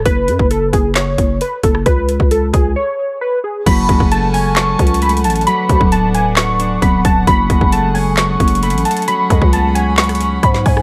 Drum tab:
CC |------------------------------------------------------------------------------------------------|------------------------------------------------------------------------------------------------|x-----------------------------------------------------------------------------------------------|------------------------------------------------------------------------------------------------|
HH |x-----------x-----------x-----------x-----------x-----------x-----------x-----------x-----------|x-----------x-----------x-----------x-----------------------------------------------------------|x-----------x-----------x-----------o-----------x-----------x---x---x---x---x---x---x--x--x--x--|x-----------x-----------x-----------x-----------x-----------x-----------x-----------x-----------|
CP |------------------------------------------------x-----------------------------------------------|------------------------------------------------------------------------------------------------|------------------------------------------------x-----------------------------------------------|------------------------------------------------x-----------------------------------------------|
SD |------------------------------------------------o-----------------------------------------r-----|------------------------------------------------------------------------------------------------|------------------------------------------------o-----------------------------------------------|------------------------------------------------o-----------------------------------------------|
BD |o-----------------o-----------------o-----------------------o-----------------------o-----------|o-----------------o-----------------o-----------------------------------------------------------|o-----------o-----o-----------------------------------------o-----------------------------------|------------o-----o-----------------------------------------------------o-----------o-----------|

CC |------------------------------------------------------------------------------------------------|------------------------------------------------------------------------------------------------|
HH |x-----------x-----------x-----------o-----------x-----------x---x---x---x---x---x---x--x--x--x--|x-----------x-----------x-----------x-----------x--x--x--x--x-----------x-----------o-----------|
CP |------------------------------------------------x-----------------------------------------------|------------------------------------------------x-----------------------------------------------|
SD |------------------------------------------------o-----------------------------------------------|------------------------------------------------o-----r-----------------------o-----------r-----|
BD |o-----------o-----o-----------------------------------------o-----------------------------------|------------o-----o-----------------------------------------------------o-----------o-----------|